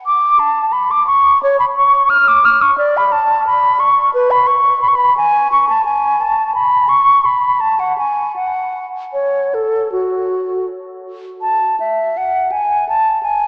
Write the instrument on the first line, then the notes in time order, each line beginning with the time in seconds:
flute
0.06 D6
0.39 A5
0.73 B5
0.91 D6
1.07 C#6
1.43 C#5
1.60 B5
1.77 C#6
2.10 F6
2.28 D6
2.45 F6
2.62 C#6
2.78 D5
2.97 B5
3.12 A5
3.47 B5
3.80 C#6
4.14 B4
4.31 B5
4.47 C#6
4.82 B5
4.88 C#6
4.95 B5
5.17 G#5
5.52 C#6
5.69 A5
5.85 G#5
6.21 A5
6.55 B5
6.89 C#6
7.26 B5
7.61 A5
7.79 F#5
7.98 G#5
8.36 F#5
9.13 C#5
9.54 A4
9.92 F#4
11.41 A5
11.80 E5
12.17 F#5
12.52 G#5
12.89 A5
13.23 G#5